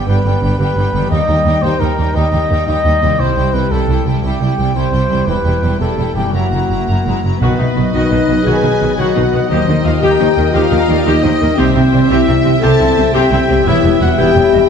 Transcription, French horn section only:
Already playing: G3 B3
1.12 D#4
3.18 G3 E4
4.23 G3 E4
4.75 G3 E4
5.29 G3 E4
6.34 A#3 E4
7.40 B3
7.93 D#4
8.44 G#4
8.97 F#4
9.48 D#4
9.84 F4
10.00 G4
10.51 F4
11.05 D#4
11.56 C4
12.10 E4
12.60 A4
13.13 G4
13.66 E4
14.02 F#4
14.18 G4

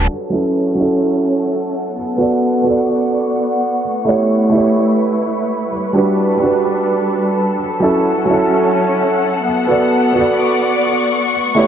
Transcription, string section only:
Already playing: A4 B4
0.08 F#3
0.29 C#4
0.65 F#5
1.96 B3
2.54 C#6
2.82 D5
3.83 A3
3.99 E4
4.57 B4
5.71 G3
5.92 D4 A4
7.59 F#3
7.87 F#5
7.97 C#4
9.45 B3
10.32 D5 C#6
11.33 A3

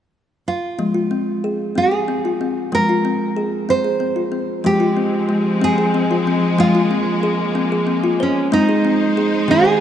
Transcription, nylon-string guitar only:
0.48 F4
1.78 G#4
2.75 A#4
3.70 C5
4.66 G4
5.64 G#4
6.60 F4
8.23 C#4
8.53 D#4
9.51 G#4

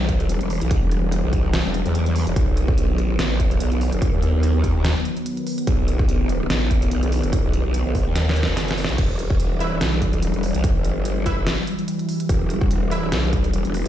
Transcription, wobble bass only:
Already playing: B1
0.29 E1
0.41 E1
0.61 B1
0.82 E1
1.24 B1
1.65 E1
1.86 E2
2.27 E1
2.36 B1
2.93 A#1
3.19 A1
3.60 B1
3.72 B1
3.92 F#1
4.13 D#2
5.67 B1
6.50 A1
6.91 B1
7.03 B1
7.23 F#1
7.44 B1
7.65 B1
7.86 B1
8.06 D#2
8.48 F#1
8.89 B1
8.98 E1
9.55 D#1
9.81 B1
10.22 E1
10.34 E1
10.55 B1
10.75 G1
12.29 E1
12.86 D#1
13.12 B1
13.54 E1
13.65 E1

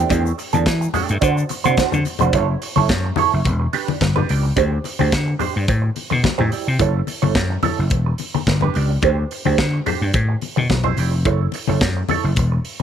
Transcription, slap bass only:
0.11 E2
0.54 E2
0.66 E3
1.10 G2
1.22 D3
1.65 C3
1.93 D3
2.21 F1
2.34 F#1
2.77 F#1
2.90 F#2
3.33 F#1
3.46 E1
4.02 G1
4.30 C#2
4.57 D2
5.00 D2
5.13 D3
5.56 G2
5.69 A2
6.12 B2
6.24 muted slap bass stroke
6.40 A2
6.68 C3
6.80 F#1
7.23 F#1
7.35 F#2
7.79 F#1
7.91 E1
8.47 G1
8.76 C#2
9.03 D2
9.46 D2
9.58 D3
10.01 G2
10.14 A2
10.58 B2
10.70 B1
10.98 F1
11.26 F#1
11.68 F#1
11.82 F#2
12.24 F#1
12.37 E1

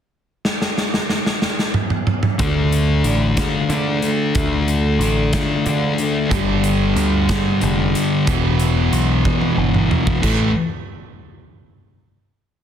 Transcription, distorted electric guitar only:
2.39 D3 A3 D4
3.70 D3 A3 D4
4.35 D3 A3 D4
5.66 D3 A3 D4
6.31 G2 D3 G3
7.62 G2 D3 G3
8.27 E2 B2 E3
9.56 E2 B2 E3
10.21 A2 E3 A3

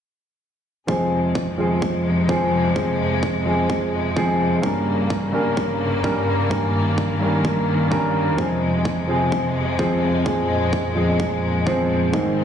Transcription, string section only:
0.89 F2 C3 G#3
4.63 G2 C#3 A#3
6.51 D#3
8.39 F2 C3 G#3
10.26 A#2
12.13 G#2 D#3 C4

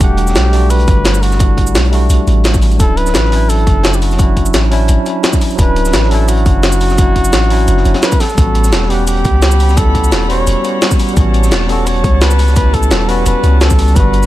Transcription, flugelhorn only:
0.01 G4
0.70 B4
1.22 F#4
2.80 A4
2.97 B4
3.49 A4
3.95 G4
4.02 F#4
5.59 B4
6.11 A4
6.29 F#4
8.03 B4
8.20 A4
8.90 G4
9.07 G4
9.77 A4
10.30 C#5
11.69 A4
11.87 C#5
12.22 B4
12.56 B4
12.74 A4
13.09 B4
13.27 B4
13.61 A4
13.96 B4

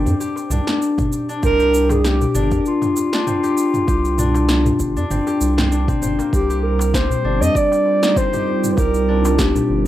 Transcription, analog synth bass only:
0.06 F2
0.50 C2
1.43 C2
2.35 G1
2.52 F2
3.88 C2
4.80 G1
4.97 F2
5.10 G1
5.41 C2
6.02 G1
6.33 C2
7.25 G1
7.41 F2
8.78 C2
9.70 G1

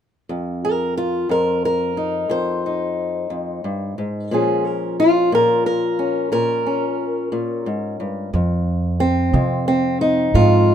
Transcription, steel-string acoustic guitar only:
0.29 F2
0.65 A#4
0.97 F4
1.29 F2 A#4
1.65 A#4
1.97 D#4
2.29 F2 C5
2.66 D#4
3.30 F2
3.64 G2
3.98 G#2
4.31 A#2 F3 C#4 G#4
4.67 A#4
5.00 F4
5.32 A#2 A#4
5.66 A#4
5.99 C#4
6.32 A#2 A#4
6.67 C#4
7.32 A#2
7.66 G#2
8.00 G2
8.34 F2
9.00 C4
9.34 F2
9.68 C4
10.01 D#4
10.35 F2 F4

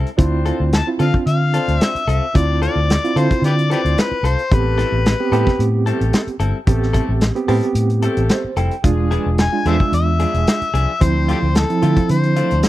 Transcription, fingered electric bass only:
0.19 D2
0.60 D2
1.00 D3
1.26 D3
1.68 D2
1.95 muted fingered electric bass stroke
2.07 C2
2.35 D2
2.76 D2
3.16 D3
3.42 D3
3.85 D2
4.11 muted fingered electric bass stroke
4.23 C2
4.52 A1
4.92 A1
5.32 A2
5.59 A2
6.01 A1
6.27 muted fingered electric bass stroke
6.40 G1
6.67 A1
7.09 A1
7.48 A2
7.75 A2
8.17 A1
8.44 muted fingered electric bass stroke
8.56 F1
8.84 E1
9.26 E1
9.65 E2
9.92 E2
10.34 E1
10.61 muted fingered electric bass stroke
10.74 C2
11.01 D2
11.42 D2
11.83 D3
12.10 D3
12.52 D2

